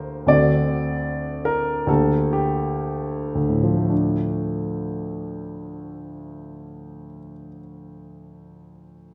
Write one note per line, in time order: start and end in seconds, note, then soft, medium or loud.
0.00 0.23 D2 soft
0.00 0.23 D3 soft
0.00 0.24 A#3 soft
0.00 0.24 G4 soft
0.00 0.30 A#4 soft
0.00 0.30 C5 medium
0.26 1.83 D2 soft
0.26 1.83 D3 soft
0.26 1.84 C4 soft
0.26 1.84 F#4 soft
0.26 1.45 D5 medium
1.45 1.88 A#4 medium
1.87 3.34 D2 soft
1.87 3.86 D3 soft
1.87 3.86 A#3 soft
1.87 2.31 G4 soft
1.87 2.34 A4 medium
2.33 3.36 G4 medium
3.35 7.05 D2 soft
3.49 7.19 A2 soft
3.63 7.32 F3 soft
3.77 7.46 A3 soft
3.89 7.59 D4 soft